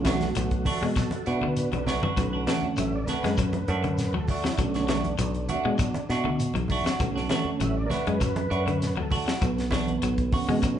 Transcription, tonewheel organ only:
0.00 0.16 D3 medium
0.00 0.16 C#4 medium
0.00 0.06 F4 medium
0.06 0.34 A3 medium
0.06 0.35 F#4 medium
0.37 0.64 A3 medium
0.37 0.66 F#4 medium
0.67 0.95 F#4 medium
0.67 0.96 A4 medium
0.97 1.25 F#4 medium
0.97 1.26 A4 medium
1.28 1.55 D4 medium
1.28 1.57 B4 medium
1.58 1.85 D4 medium
1.58 1.87 B4 medium
1.84 1.88 A#4 medium
1.89 2.46 B4 medium
2.17 3.03 D3 medium
2.17 3.03 A3 medium
2.17 3.04 C#4 medium
2.80 2.93 E5 medium
2.96 3.08 D5 medium
3.05 3.09 A#4 medium
3.10 3.96 B4 medium
3.38 3.65 D3 soft
3.38 3.65 A3 soft
3.38 3.65 C#4 soft
4.00 4.14 B4 medium
4.16 4.44 A4 medium
4.46 4.58 E4 medium
4.57 4.99 D3 medium
4.57 4.99 A3 medium
4.57 4.99 C#4 medium
4.57 6.36 D4 loud
6.99 7.86 D3 medium
6.99 7.87 A3 medium
6.99 7.87 C#4 medium
7.62 7.76 E5 medium
7.77 7.90 D5 medium
7.86 7.90 A#4 medium
7.91 8.79 B4 loud
8.83 8.97 B4 medium
8.98 9.27 A4 medium
9.29 9.42 E4 medium
9.43 10.79 B3 loud
10.32 10.79 D3 medium
10.32 10.79 A3 medium
10.32 10.79 C#4 medium

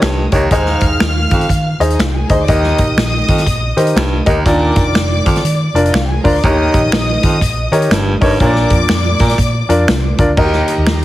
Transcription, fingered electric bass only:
0.02 0.26 C2 medium
0.32 0.47 C#2 medium
0.51 0.75 D#2 loud
0.81 0.96 D#2 medium
1.00 1.24 D#2 medium
1.31 1.46 D#3 medium
1.49 1.73 D#3 loud
1.79 1.95 D#2 medium
1.99 2.23 C2 loud
2.30 2.45 D2 medium
2.48 2.72 D#2 loud
2.79 2.94 A#1 medium
2.97 3.21 A#1 loud
3.29 3.44 D#3 loud
3.46 3.70 A#1 medium
3.77 3.92 D#3 medium
3.95 4.20 C2 medium
4.27 4.42 D2 medium
4.46 4.70 D#2 medium
4.76 4.91 F1 medium
4.95 5.19 F1 loud
5.26 5.41 D#3 loud
5.44 5.68 D#3 medium
5.74 5.89 F1 medium
5.93 6.17 C2 medium
6.25 6.40 D2 medium
6.44 6.67 D#2 medium
6.74 6.89 A#1 medium
6.93 7.16 A#1 loud
7.24 7.38 D#3 loud
7.41 7.65 A#1 medium
7.71 7.87 D#3 loud
7.90 8.14 G1 medium
8.22 8.36 G#1 medium
8.40 8.64 A#1 loud
8.70 8.85 F2 medium
8.89 9.13 F2 medium
9.20 9.35 A#2 loud
9.38 9.62 A#2 loud
9.69 9.84 F2 medium
9.88 10.12 C2 medium
10.19 10.34 D2 medium
10.37 10.61 D#2 loud
10.78 11.05 D#2 medium

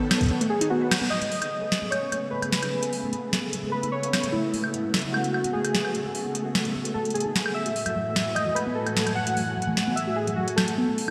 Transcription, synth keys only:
0.00 0.66 A4 medium
0.50 0.71 G#4 loud
0.70 1.12 F#4 medium
1.10 1.94 D#5 loud
1.90 2.33 C#5 medium
2.31 2.40 B4 medium
2.51 3.28 B4 medium
3.72 3.93 B4 loud
3.92 4.34 C#5 loud
4.32 5.16 E4 medium
5.13 5.55 F#4 medium
5.53 5.72 G#4 medium
5.73 6.50 G#4 medium
6.94 7.03 A4 medium
7.14 7.56 G#4 medium
7.54 8.38 E5 loud
8.35 8.56 D#5 loud
8.55 8.76 B4 medium
8.75 9.17 A4 medium
9.15 9.99 F#5 loud
9.96 10.17 E5 loud
10.16 10.25 G#4 medium
10.36 10.58 F#4 medium
10.56 11.11 A4 medium

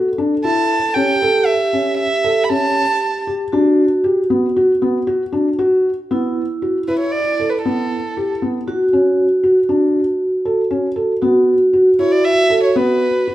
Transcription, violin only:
0.45 0.96 A5 medium
0.95 1.47 G5 medium
1.46 1.97 E5 medium
1.98 2.46 E5 medium
2.44 2.51 B5 medium
2.49 3.27 A5 medium
6.88 6.98 B4 medium
6.99 7.13 C#5 medium
7.12 7.51 D5 medium
7.50 7.62 B4 medium
7.62 8.36 A4 medium
12.00 12.14 C#5 medium
12.12 12.26 D5 medium
12.24 12.63 E5 loud
12.63 12.78 C#5 medium
12.76 13.35 B4 medium

